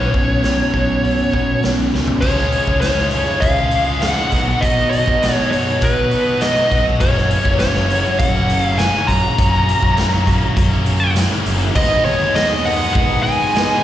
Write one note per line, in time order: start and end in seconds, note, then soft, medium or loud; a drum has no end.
0.00 2.22 B2 medium
0.00 2.23 F#3 medium
0.00 2.23 B3 medium
0.00 0.13 C#4 medium
0.00 0.13 F#4 medium
0.00 1.62 C#5 medium
0.14 0.60 B1 medium
0.14 0.41 B3 medium
0.14 0.41 C#4 medium
0.14 kick medium
0.43 0.71 B3 medium
0.43 0.71 C#4 medium
0.43 snare medium
0.43 open hi-hat soft
0.74 1.20 B1 medium
0.74 1.02 B3 medium
0.74 1.02 C#4 medium
0.74 kick medium
1.04 1.31 B3 medium
1.04 1.31 C#4 medium
1.04 open hi-hat soft
1.33 1.57 B2 medium
1.33 1.60 B3 soft
1.33 1.61 C#4 medium
1.33 kick medium
1.63 1.92 B1 medium
1.63 1.91 B3 medium
1.63 1.91 C#4 medium
1.63 snare medium
1.63 open hi-hat soft
1.94 2.21 C#2 medium
1.94 2.21 B3 soft
1.94 2.21 C#4 medium
1.94 snare soft
2.08 floor tom medium
2.21 2.58 C#2 loud
2.21 2.82 C#3 medium
2.21 2.70 F3 medium
2.21 2.68 G#3 medium
2.21 2.67 C#4 medium
2.21 2.78 C#5 medium
2.21 kick medium
2.21 crash medium
2.25 3.13 F4 medium
2.39 snare soft
2.52 closed hi-hat medium
2.67 3.25 C#2 medium
2.67 2.83 F3 medium
2.67 2.83 G#3 medium
2.67 2.84 C#4 medium
2.67 kick medium
2.81 3.13 C#3 medium
2.81 3.14 F3 medium
2.81 3.15 G#3 medium
2.81 3.15 C#4 medium
2.81 3.44 C#5 medium
2.81 snare medium
2.81 closed hi-hat medium
2.98 snare soft
3.11 3.59 C#3 medium
3.11 4.01 F4 medium
3.11 closed hi-hat medium
3.15 3.29 F3 medium
3.15 3.29 G#3 medium
3.15 3.28 C#4 medium
3.29 muted overdriven electric guitar stroke soft
3.40 4.11 C#2 medium
3.40 4.02 F5 medium
3.40 kick loud
3.40 closed hi-hat medium
3.58 3.74 F3 soft
3.58 3.74 G#3 medium
3.58 3.75 C#4 medium
3.71 4.02 C#3 medium
3.71 3.89 F3 medium
3.71 closed hi-hat medium
3.76 3.88 G#3 medium
3.76 3.87 C#4 medium
3.88 4.03 F3 medium
3.88 4.03 G#3 medium
3.88 4.03 C#4 medium
4.02 4.31 C#3 medium
4.02 4.32 F3 medium
4.02 4.32 G#3 medium
4.02 4.32 C#4 medium
4.02 4.32 F4 medium
4.02 4.64 F#5 medium
4.02 snare loud
4.02 closed hi-hat medium
4.32 4.44 B1 medium
4.32 4.61 B2 medium
4.32 4.49 F#3 medium
4.32 4.47 B3 medium
4.32 4.47 D#4 medium
4.32 kick medium
4.32 closed hi-hat medium
4.36 5.24 F#4 medium
4.48 muted overdriven electric guitar stroke medium
4.61 4.97 B2 medium
4.61 5.22 B2 medium
4.61 5.11 F#3 loud
4.61 5.09 B3 medium
4.61 5.07 D#4 medium
4.61 4.89 D#5 medium
4.61 kick loud
4.61 closed hi-hat medium
4.90 5.34 D#5 medium
4.90 closed hi-hat medium
5.07 5.65 B2 medium
5.07 5.24 F#3 soft
5.07 5.23 B3 medium
5.07 5.24 D#4 medium
5.07 kick medium
5.22 5.52 B2 medium
5.22 5.53 F#3 medium
5.22 5.53 B3 medium
5.22 5.54 D#4 medium
5.22 6.11 F#4 medium
5.22 snare loud
5.22 closed hi-hat medium
5.34 5.47 C#5 medium
5.52 5.97 B2 medium
5.52 5.68 F#3 medium
5.52 5.67 B3 medium
5.52 5.66 D#4 medium
5.52 5.83 C#5 medium
5.52 closed hi-hat medium
5.67 muted overdriven electric guitar stroke soft
5.81 6.51 B2 medium
5.81 6.44 B4 medium
5.81 kick loud
5.81 closed hi-hat medium
5.96 6.11 F#3 medium
5.96 6.11 B3 medium
5.96 6.12 D#4 medium
6.11 6.39 B2 medium
6.11 6.26 F#3 medium
6.11 6.25 B3 medium
6.11 6.24 D#4 medium
6.11 7.02 F#4 medium
6.11 closed hi-hat medium
6.25 6.41 F#3 medium
6.25 6.40 B3 medium
6.25 6.41 D#4 medium
6.40 6.70 B2 medium
6.40 6.71 F#3 loud
6.40 6.71 B3 medium
6.40 6.72 D#4 loud
6.40 6.83 D#5 loud
6.40 snare loud
6.40 closed hi-hat medium
6.71 6.94 B1 medium
6.71 6.99 B2 medium
6.71 6.87 F#3 medium
6.71 6.86 B3 medium
6.71 6.86 D#4 medium
6.71 kick medium
6.71 closed hi-hat medium
6.87 muted overdriven electric guitar stroke soft
7.00 7.35 F#1 loud
7.00 7.59 F#2 medium
7.00 7.59 C#3 medium
7.00 7.47 F#3 medium
7.00 7.46 A#3 medium
7.00 7.45 C#4 medium
7.00 7.89 F#4 loud
7.00 7.56 C#5 medium
7.00 kick loud
7.00 closed hi-hat medium
7.17 snare soft
7.31 closed hi-hat medium
7.45 8.02 F#1 medium
7.45 7.60 F#3 medium
7.45 7.60 A#3 medium
7.45 7.61 C#4 medium
7.45 kick medium
7.59 8.78 F#2 medium
7.59 7.89 C#3 medium
7.59 7.91 F#3 medium
7.59 7.92 A#3 medium
7.59 7.92 C#4 medium
7.59 8.15 C#5 medium
7.59 snare loud
7.59 closed hi-hat medium
7.76 snare soft
7.89 8.78 F#2 medium
7.89 8.06 C#3 medium
7.89 8.06 F#3 medium
7.89 8.06 A#3 medium
7.89 8.05 C#4 medium
7.89 8.77 F#4 loud
7.89 closed hi-hat medium
8.07 muted overdriven electric guitar stroke medium
8.19 8.88 F#1 loud
8.19 8.63 F#5 medium
8.19 kick loud
8.19 closed hi-hat medium
8.35 8.49 F#3 medium
8.35 8.49 A#3 medium
8.35 8.49 C#4 medium
8.49 8.78 C#3 medium
8.49 8.65 F#3 medium
8.49 8.64 A#3 medium
8.49 8.64 C#4 medium
8.49 closed hi-hat medium
8.63 8.78 F#3 medium
8.63 8.79 A#3 medium
8.63 8.79 C#4 medium
8.63 8.78 F5 medium
8.79 9.38 F#2 medium
8.79 9.07 C#3 loud
8.79 9.08 F#3 medium
8.79 9.08 A#3 medium
8.79 9.09 C#4 medium
8.79 9.38 F#4 medium
8.79 9.10 G#5 loud
8.79 snare loud
8.79 closed hi-hat medium
9.07 9.20 F#2 medium
9.07 9.24 C#3 medium
9.07 9.23 F#3 medium
9.07 9.23 A#3 medium
9.07 9.23 C#4 medium
9.07 11.12 A#5 medium
9.07 kick medium
9.07 closed hi-hat medium
9.24 muted overdriven electric guitar stroke medium
9.38 9.73 F#2 medium
9.38 9.98 F#2 medium
9.38 9.99 C#3 medium
9.38 9.85 F#3 medium
9.38 9.84 A#3 loud
9.38 9.82 C#4 loud
9.38 10.25 F#4 medium
9.38 kick loud
9.38 closed hi-hat medium
9.69 closed hi-hat medium
9.83 10.40 F#2 medium
9.83 9.99 F#3 medium
9.83 9.99 A#3 medium
9.83 9.99 C#4 medium
9.83 kick medium
9.97 10.58 F#2 medium
9.97 10.27 C#3 medium
9.97 10.28 F#3 medium
9.97 10.28 A#3 medium
9.97 10.29 C#4 medium
9.97 snare medium
9.97 closed hi-hat medium
10.26 11.15 F#2 medium
10.26 10.44 C#3 medium
10.26 10.43 F#3 medium
10.26 10.43 A#3 medium
10.26 10.43 C#4 medium
10.26 11.15 F#4 medium
10.26 kick medium
10.26 closed hi-hat medium
10.44 muted overdriven electric guitar stroke medium
10.57 11.25 F#2 loud
10.57 kick loud
10.57 closed hi-hat medium
10.73 10.88 F#3 medium
10.73 10.88 A#3 medium
10.73 10.90 C#4 medium
10.86 11.18 C#3 medium
10.86 11.05 F#3 medium
10.86 11.04 A#3 medium
10.86 closed hi-hat medium
10.91 11.03 C#4 medium
11.04 11.19 F#3 medium
11.04 11.18 A#3 medium
11.04 11.19 C#4 medium
11.16 11.76 F#2 loud
11.16 11.48 C#3 medium
11.16 11.50 A#3 loud
11.16 11.75 F#4 medium
11.16 snare loud
11.16 closed hi-hat loud
11.20 11.49 F#3 medium
11.20 11.50 C#4 medium
11.46 11.69 F#1 medium
11.46 11.63 C#3 medium
11.46 11.63 F#3 medium
11.46 closed hi-hat medium
11.51 11.62 A#3 medium
11.51 11.62 C#4 medium
11.63 muted overdriven electric guitar stroke soft
11.75 11.99 G#1 medium
11.75 12.34 G#2 medium
11.75 12.37 G#2 medium
11.75 12.34 D#3 medium
11.75 12.37 D#3 loud
11.75 12.34 G#3 medium
11.75 12.38 G#3 loud
11.75 12.35 B3 loud
11.75 13.84 B3 medium
11.75 12.34 B3 medium
11.75 12.35 D#4 loud
11.75 13.84 D#4 medium
11.75 12.35 D#4 medium
11.75 13.84 G#4 medium
11.75 12.36 G#4 loud
11.75 12.35 B4 medium
11.75 12.04 D#5 medium
11.75 13.84 D#5 medium
11.75 kick loud
11.75 crash loud
12.05 12.75 D#2 loud
12.05 12.35 C#5 medium
12.05 open hi-hat medium
12.35 12.65 G#2 medium
12.35 12.65 D#3 medium
12.35 12.65 G#3 medium
12.35 12.65 B3 medium
12.35 12.64 D#4 medium
12.35 12.66 D#4 medium
12.35 12.66 G#4 medium
12.35 12.63 B4 medium
12.35 12.63 D#5 medium
12.35 snare loud
12.35 open hi-hat medium
12.64 12.93 G#2 medium
12.64 12.94 D#3 medium
12.64 12.95 G#3 loud
12.64 12.95 G#3 soft
12.64 12.94 B3 loud
12.64 12.96 B3 soft
12.64 12.95 D#4 medium
12.64 12.95 D#4 loud
12.64 12.95 G#4 loud
12.64 12.95 B4 medium
12.64 12.92 F#5 loud
12.64 open hi-hat medium
12.94 13.53 G#2 medium
12.94 13.84 G#2 medium
12.94 13.54 D#3 loud
12.94 13.54 G#3 loud
12.94 13.54 G#3 medium
12.94 13.54 B3 loud
12.94 13.55 B3 medium
12.94 13.54 D#4 loud
12.94 13.54 D#4 medium
12.94 13.54 G#4 loud
12.94 13.22 F#5 loud
12.94 kick loud
12.94 open hi-hat medium
12.98 13.55 B4 medium
13.23 13.80 G#5 loud
13.23 open hi-hat medium
13.54 13.84 G#2 medium
13.54 13.83 G#2 medium
13.54 13.83 D#3 medium
13.54 13.84 D#3 medium
13.54 13.84 G#3 medium
13.54 13.83 B3 medium
13.54 13.84 B3 medium
13.54 13.84 D#4 loud
13.54 13.84 D#4 medium
13.54 13.84 G#4 medium
13.54 13.84 B4 medium
13.54 snare loud
13.54 open hi-hat medium